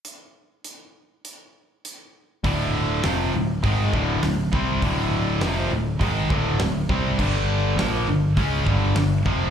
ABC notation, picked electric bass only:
X:1
M:4/4
L:1/8
Q:1/4=101
K:Dm
V:1 name="Picked electric bass" clef=bass
z8 | D,,,2 F,,, D,,, ^G,,, D,,, D,,, C,, | D,,,2 F,,, D,,, ^G,,, D,,, D,,, C,, | G,,,2 B,,, G,,, ^C,, G,,, G,,, F,,, |]